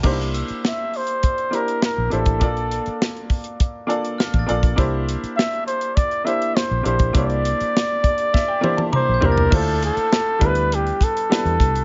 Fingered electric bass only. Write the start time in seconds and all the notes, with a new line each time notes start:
0.05 C2
0.50 muted fingered electric bass stroke
1.98 A#1
2.13 A1
2.42 A#1
2.87 muted fingered electric bass stroke
4.34 A1
4.50 A#1
4.78 C2
5.23 muted fingered electric bass stroke
6.71 A#1
6.85 A#1
7.15 C2
7.61 muted fingered electric bass stroke
9.09 A#1
9.23 C2
9.53 D2
9.97 muted fingered electric bass stroke
10.42 D2
11.45 E2
11.60 C2